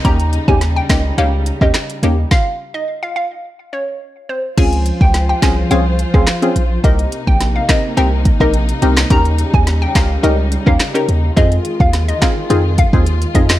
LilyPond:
<<
  \new Staff \with { instrumentName = "Synth pluck" } { \time 4/4 \key des \lydian \tempo 4 = 106 bes''8 r16 aes''16 r16 g''16 ees''16 r16 f''16 r8 ees''16 r4 | f''8 r16 ees''16 r16 f''16 f''16 r8. des''16 r8. c''16 r16 | aes''8 r16 g''16 r16 g''16 aes''16 r16 f''16 r8 f''16 r4 | ees''8 r16 g''16 r16 f''16 ees''16 r16 g''16 r8 ees''16 r4 |
bes''8 r16 aes''16 r16 g''16 f''16 r16 ees''16 r8 f''16 r4 | ees''8 r16 f''16 r16 ees''16 f''16 r8. f''16 r8. ees''16 r16 | }
  \new Staff \with { instrumentName = "Synth stab" } { \time 4/4 \key des \lydian <bes des' ees' g'>16 r8 <bes des' ees' g'>16 r8 <bes des' ees' g'>16 r16 <bes des' ees' g'>8. <bes des' ees' g'>16 r8 <bes des' ees' g'>16 r16 | r1 | <c' des' f' aes'>4. <c' des' f' aes'>8 <c' des' f' aes'>16 r8 <c' des' f' aes'>16 r16 <c' des' f' aes'>16 r8 | <c' ees' g' bes'>4. <c' ees' g' bes'>8 <c' ees' g' bes'>16 r8 <c' ees' g' bes'>16 r8 <c' ees' g' bes'>16 r16 |
<des' ees' g' bes'>4. <des' ees' g' bes'>8 <des' ees' g' bes'>16 r8 <des' ees' g' bes'>16 r16 <des' ees' g' bes'>16 r8 | <c' ees' f' aes'>4. <c' ees' f' aes'>8 <c' ees' f' aes'>16 r8 <c' ees' f' aes'>16 r8 <c' ees' f' aes'>16 r16 | }
  \new Staff \with { instrumentName = "String section" } { \clef bass \time 4/4 \key des \lydian << { ees'1 | r1 | f'1 | ees'1~ |
ees'1 | f'1 | } \\ { <des g>1 | r1 | <f c''>1 | <c bes>1 |
<des g>1 | <ees aes>1 | } >> }
  \new Staff \with { instrumentName = "808-style bass" } { \clef bass \time 4/4 \key des \lydian ees,8. ees,8. des,8 des,8. ees,16 r8 ees,8 | r1 | des,8. des,8. c,8 c,8. des,16 r8 bes,,8 | c,8 r16 bes,,8. r8 c,8. bes,,8. c,8 |
ees,8. ees,8. des,8 des,8. ees,16 r8 ees,8 | f,8 r16 ees,8. r8 f,8. ees,8. f,8 | }
  \new DrumStaff \with { instrumentName = "Drums" } \drummode { \time 4/4 <hh bd>16 hh16 hh16 bd16 <hh sn>8 <hc hh bd sn>8 hh8 hh16 <bd ss>16 <hc hh sn>16 hh16 hh8 | <bd sn>4 r4 r4 r4 | <cymc hh bd>16 hh16 hh16 bd16 <hh sn>8 <hc hh bd sn>8 hh8 hh16 <bd ss>16 <hc hh sn>16 hh16 hh8 | <hh bd>16 hh16 hh16 bd16 <hh sn>8 <hc hh bd sn>8 hh8 <hh bd>16 <bd ss>16 hh16 hh16 hh16 <hc sn>16 |
<hh bd>16 hh16 hh16 bd16 <hh sn>8 <hc hh bd sn>8 hh8 hh16 <bd ss>16 <hc hh sn>16 hh16 hh8 | <hh bd>16 hh16 hh16 bd16 <hh sn>16 hh16 <hc hh bd sn>8 hh8 <hh bd>16 bd16 hh16 hh16 <hh bd>16 <hc sn>16 | }
>>